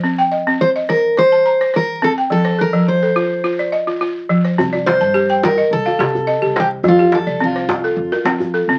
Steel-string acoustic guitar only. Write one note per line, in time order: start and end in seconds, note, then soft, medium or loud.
0.61 0.69 C5 medium
0.89 1.18 A#4 medium
1.18 1.71 C5 medium
1.76 2.04 A#4 medium
2.04 2.12 A4 medium
2.32 2.61 A4 medium
2.61 2.88 A#4 medium
2.88 3.69 C5 medium
4.86 5.44 C5 medium
5.45 5.70 A#4 medium
5.73 6.60 A4 medium
6.60 6.67 G4 medium
6.88 7.16 F4 medium
7.15 7.43 A4 medium
7.44 8.79 F4 medium